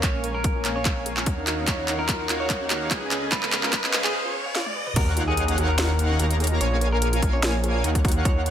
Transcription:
Already playing: string section G#3 A#3 C#4, riser
0.03 detuned saw bass A#1, supersaw synth A#3 A#4 C#5 F5 G#5, clean electric guitar C#5, kick, clap, closed hi-hat
0.14 synth arpeggio sound C#4
0.24 synth arpeggio sound A#4, closed hi-hat
0.35 clean electric guitar A#4
0.44 synth arpeggio sound G#4, kick, closed hi-hat
0.55 synth arpeggio sound F4
0.65 detuned saw bass A#1, supersaw synth A#3 A#4 C#5 F5 G#5, clap, closed hi-hat
0.76 synth arpeggio sound C#4, clean electric guitar C#5
0.85 synth arpeggio sound A#4, kick, clap, closed hi-hat
1.06 synth arpeggio sound G#4, closed hi-hat
1.17 synth arpeggio sound F4, clap
1.26 detuned saw bass D#2, supersaw synth D#4 A#4 C#5 F5 F#5, kick, closed hi-hat
1.37 synth arpeggio sound C#4
1.47 string section D#3 F#4, synth arpeggio sound F#4, clap, closed hi-hat
1.67 detuned saw bass D#2, supersaw synth D#4 A#4 C#5 F5 F#5, synth arpeggio sound F4, clean electric guitar C#5, kick, clap, closed hi-hat
1.78 synth arpeggio sound D#4
1.88 clap, closed hi-hat
1.99 synth arpeggio sound C#4, clean electric guitar A#4
2.09 synth arpeggio sound F#4, kick, clap, closed hi-hat
2.29 detuned saw bass D#2, supersaw synth D#4 A#4 C#5 F5 F#5, synth arpeggio sound F4, clap, closed hi-hat
2.40 synth arpeggio sound D#4, clean electric guitar C#5
2.50 kick, clap, closed hi-hat
2.61 synth arpeggio sound C#4
2.70 synth arpeggio sound F#4, clap, closed hi-hat
2.91 detuned saw bass C#2, supersaw synth C#4 G#4 B4 D#5 G#5, synth arpeggio sound F4, kick, clap, closed hi-hat
3.02 synth arpeggio sound D#4
3.11 string section C#3 G#3 B3, clap, closed hi-hat
3.22 synth arpeggio sound C#4
3.32 detuned saw bass C#2, supersaw synth C#4 G#4 B4 D#5 F5, clean electric guitar B4, synth arpeggio sound B4, kick, clap, closed hi-hat
3.43 clap
3.52 synth arpeggio sound G#4, clap, closed hi-hat
3.63 synth arpeggio sound F4, clean electric guitar A#4, clap
3.73 kick, clap, closed hi-hat
3.84 synth arpeggio sound C#4, clap
3.93 detuned saw bass C#2, supersaw synth C#4 G#4 B4 D#5 F5, synth arpeggio sound B4, clap, closed hi-hat
4.04 clean electric guitar G#4, clap
4.14 synth arpeggio sound G#4
4.25 synth arpeggio sound F4
4.46 synth arpeggio sound F5
4.55 synth arpeggio sound F5, snare
4.66 high tom
4.76 synth arpeggio sound B4
4.87 synth arpeggio sound B4, mid tom
4.96 detuned saw bass D#2, supersaw synth D#4 A#4 C#5 F5 F#5, synth arpeggio sound F#4, clean electric guitar A#4, digital synth lead F#5, kick, closed hi-hat, crash, sub drop
5.17 synth arpeggio sound F4, closed hi-hat
5.28 synth arpeggio sound D#4, clean electric guitar G#4
5.37 closed hi-hat
5.48 synth arpeggio sound C#4, closed hi-hat
5.58 detuned saw bass D#2, supersaw synth D#4 A#4 C#5 F5 F#5, synth arpeggio sound F#4, digital synth lead F#5, closed hi-hat
5.69 clean electric guitar A#4
5.78 synth arpeggio sound F4, snare, closed hi-hat
5.90 synth arpeggio sound D#4
5.99 closed hi-hat
6.10 synth arpeggio sound C#4
6.19 detuned saw bass D#2, supersaw synth A#3 A#4 C#5 F5 A#5, synth arpeggio sound F#4, digital synth lead A#5, closed hi-hat
6.31 closed hi-hat
6.40 synth arpeggio sound G#4, closed hi-hat
6.44 closed hi-hat
6.47 closed hi-hat
6.51 synth arpeggio sound F4
6.61 detuned saw bass A#1, supersaw synth A#3 A#4 C#5 F5 G#5, clean electric guitar C#5, digital synth lead G#5, closed hi-hat
6.72 synth arpeggio sound C#4
6.81 synth arpeggio sound A#4, closed hi-hat
6.92 clean electric guitar A#4
7.02 synth arpeggio sound G#4, closed hi-hat
7.13 synth arpeggio sound F4, closed hi-hat
7.22 detuned saw bass A#1, supersaw synth A#3 A#4 C#5 F5 G#5, digital synth lead G#5, kick, closed hi-hat
7.33 synth arpeggio sound C#4, clean electric guitar C#5
7.43 synth arpeggio sound A#4, snare, closed hi-hat
7.64 synth arpeggio sound G#4, closed hi-hat
7.75 synth arpeggio sound F4
7.84 detuned saw bass D#2, supersaw synth D#4 A#4 C#5 F5 F#5, digital synth lead F#5, closed hi-hat
7.95 synth arpeggio sound C#4, kick, closed hi-hat
8.05 synth arpeggio sound F#4, kick, closed hi-hat
8.08 closed hi-hat
8.12 closed hi-hat
8.25 detuned saw bass D#2, supersaw synth D#4 A#4 C#5 F5 F#5, synth arpeggio sound F4, clean electric guitar C#5, digital synth lead F#5, kick, closed hi-hat
8.36 synth arpeggio sound D#4
8.46 closed hi-hat

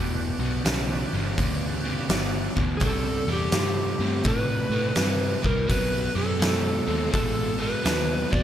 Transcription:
Already playing: picked electric bass E1, overdriven electric guitar E2 B2, tonewheel organ F#4 G4 B4 D5
0.39 picked electric bass B1, overdriven electric guitar E2 B2
0.65 picked electric bass B1, overdriven electric guitar E2 C#3, snare, open hi-hat
1.13 picked electric bass G1, overdriven electric guitar E2 C#3
1.38 picked electric bass D2, overdriven electric guitar E2 C#3, kick, open hi-hat
1.84 overdriven electric guitar E2 C#3
2.08 picked electric bass G1, overdriven electric guitar E2 B2, snare, open hi-hat
2.56 picked electric bass D2, overdriven electric guitar E2 B2, kick
2.77 overdriven electric guitar C3 G3, tonewheel organ B3 D4 E4, electric slide guitar G#4, open hi-hat
2.81 picked electric bass C2, tonewheel organ G4, kick
2.86 electric slide guitar A4
3.27 picked electric bass E2, overdriven electric guitar C3 G3
3.33 electric slide guitar G4
3.52 picked electric bass G2, overdriven electric guitar C3 A3, snare, open hi-hat
3.99 picked electric bass G2, overdriven electric guitar C3 A3
4.24 picked electric bass A2, overdriven electric guitar C3 A3, kick, open hi-hat
4.28 electric slide guitar B4
4.70 picked electric bass A2, overdriven electric guitar C3 A3
4.95 picked electric bass G2, overdriven electric guitar C3 G3, snare, open hi-hat
5.43 picked electric bass C2, overdriven electric guitar C3 G3, electric slide guitar A#4, kick
5.68 picked electric bass B1, overdriven electric guitar B2 F#3, tonewheel organ D#4 F#4 A5, electric slide guitar B4, kick, open hi-hat
5.72 tonewheel organ C4
6.15 picked electric bass F#2, overdriven electric guitar B2 F#3, electric slide guitar A4
6.39 picked electric bass F#2, overdriven electric guitar B2 G#3, snare, open hi-hat
6.87 picked electric bass D#2, overdriven electric guitar B2 G#3
7.11 picked electric bass A1, overdriven electric guitar B2 G#3, electric slide guitar A4, kick, open hi-hat
7.58 overdriven electric guitar B2 G#3
7.62 electric slide guitar B4
7.83 picked electric bass D#2, overdriven electric guitar B2 F#3, snare, open hi-hat
8.30 picked electric bass D#2, overdriven electric guitar B2 F#3, electric slide guitar D5, kick

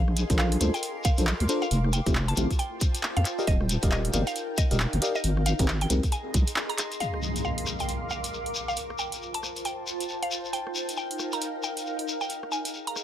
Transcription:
Already playing: wobble bass A#1, ambient pad A#4 G#5 C6, synth pluck F5
0.08 ambient pad F5, cross-stick
0.17 closed hi-hat, shekere
0.30 wobble bass A#1, fm electric piano D4 F4 A4 A#4 C5, kick, closed hi-hat, shekere
0.37 synth pluck F5, ambient pad D6, clap, shekere
0.52 closed hi-hat
0.61 wobble bass D2, fm electric piano D4 F4 A4 A#4 C5, cross-stick, closed hi-hat, shekere
0.74 synth pluck G5, closed hi-hat, shekere
0.83 closed hi-hat, shekere
1.04 synth pluck F5, kick, closed hi-hat, shekere
1.17 wobble bass A#1, fm electric piano D4 F4 A4 A#4 C5, closed hi-hat, shekere
1.27 clap, shekere
1.40 wobble bass D2, closed hi-hat
1.49 fm electric piano D4 F4 A4 A#4 C5, closed hi-hat, shekere
1.62 synth pluck F5, shekere
1.71 wobble bass F1, ambient pad F4, closed hi-hat, shekere
1.81 ambient pad C5 G5, cross-stick
1.93 synth pluck G5, closed hi-hat, shekere
2.06 wobble bass F1, fm electric piano A3 C4 E4 F4 G4, kick, closed hi-hat, shekere
2.15 clap, shekere
2.28 synth pluck A5, ambient pad A5, closed hi-hat
2.36 wobble bass A1, fm electric piano A3 C4 E4 F4 G4, closed hi-hat, shekere
2.50 kick, closed hi-hat, shekere
2.59 synth pluck G5, closed hi-hat, shekere
2.81 kick, closed hi-hat, shekere
2.95 closed hi-hat, shekere
3.03 clap, shekere
3.17 wobble bass F2, synth pluck F5, closed hi-hat
3.25 ambient pad D#4, clap, closed hi-hat, shekere
3.39 fm electric piano G4 A#4 D5 D#5 F5, shekere
3.47 wobble bass D#1, ambient pad A#4, synth pluck D#5, kick, closed hi-hat, shekere
3.61 cross-stick
3.68 ambient pad F5, closed hi-hat, shekere
3.82 wobble bass D#1, fm electric piano G4 A#4 D5 D#5 F5, kick, closed hi-hat, shekere
3.92 synth pluck D#5, clap, shekere
4.05 closed hi-hat
4.13 wobble bass G1, fm electric piano G4 A#4 D5 D#5 F5, cross-stick, closed hi-hat, shekere
4.27 synth pluck F5, closed hi-hat, shekere
4.36 closed hi-hat, shekere
4.58 synth pluck D#5, kick, closed hi-hat, shekere
4.71 wobble bass D#1, fm electric piano G4 A#4 D5 D#5 F5, closed hi-hat, shekere
4.79 clap, shekere
4.93 wobble bass G1, closed hi-hat
5.02 fm electric piano G4 A#4 D5 D#5 F5, closed hi-hat, shekere
5.15 synth pluck D#5, shekere
5.24 wobble bass G#1, ambient pad G#4, closed hi-hat, shekere
5.31 ambient pad D#5
5.37 cross-stick
5.45 synth pluck F5, ambient pad A#5, closed hi-hat, shekere
5.59 wobble bass G#1, fm electric piano C4 D#4 G4 G#4 A#4, kick, closed hi-hat, shekere
5.68 clap, shekere
5.74 ambient pad C6
5.81 synth pluck G5, closed hi-hat
5.90 wobble bass C2, fm electric piano C4 D#4 G4 G#4 A#4, closed hi-hat, shekere
6.03 kick, closed hi-hat, shekere
6.12 synth pluck G#5, closed hi-hat, shekere
6.34 wobble bass C2, kick, closed hi-hat, shekere
6.47 closed hi-hat, shekere
6.56 clap, shekere
6.69 synth pluck A#5, closed hi-hat
6.78 clap, closed hi-hat, shekere
6.91 closed hi-hat, shekere
7.00 ambient pad A#4, synth pluck F5, closed hi-hat, impact, shekere
7.05 ambient pad F5
7.14 cross-stick
7.22 shekere
7.31 ambient pad D6
7.36 closed hi-hat, shekere
7.44 synth pluck F5, shekere
7.58 closed hi-hat
7.66 cross-stick, shekere
7.79 synth pluck G5, closed hi-hat, shekere
7.89 closed hi-hat, shekere
8.10 synth pluck F5, shekere
8.24 closed hi-hat, shekere
8.34 shekere
8.46 closed hi-hat
8.55 shekere
8.68 synth pluck F5, shekere
8.76 ambient pad F4, closed hi-hat, shekere
8.90 ambient pad C5, cross-stick
8.98 synth pluck G5, shekere
9.10 ambient pad A5, closed hi-hat, shekere
9.22 ambient pad G5, shekere
9.34 synth pluck A5, closed hi-hat
9.43 cross-stick, shekere
9.56 closed hi-hat, shekere
9.65 synth pluck G5, closed hi-hat, shekere
9.87 shekere
10.00 closed hi-hat, shekere
10.09 shekere
10.23 synth pluck F5, closed hi-hat
10.31 ambient pad D#4, shekere
10.44 ambient pad F5, shekere
10.52 ambient pad A#4, synth pluck G5, closed hi-hat, shekere
10.67 cross-stick
10.75 shekere
10.89 closed hi-hat, shekere
10.96 synth pluck G5, shekere
11.11 closed hi-hat
11.19 cross-stick, shekere
11.32 synth pluck A#5, closed hi-hat, shekere
11.41 closed hi-hat, shekere
11.63 synth pluck G5, shekere
11.77 closed hi-hat, shekere
11.86 shekere
11.99 closed hi-hat
12.08 shekere
12.21 synth pluck G5, shekere
12.29 ambient pad G#4, closed hi-hat, shekere
12.43 cross-stick
12.52 synth pluck G#5, ambient pad A#5, shekere
12.56 ambient pad D#5
12.65 closed hi-hat, shekere
12.74 shekere
12.82 ambient pad C6
12.87 synth pluck A#5, closed hi-hat
12.96 cross-stick, shekere

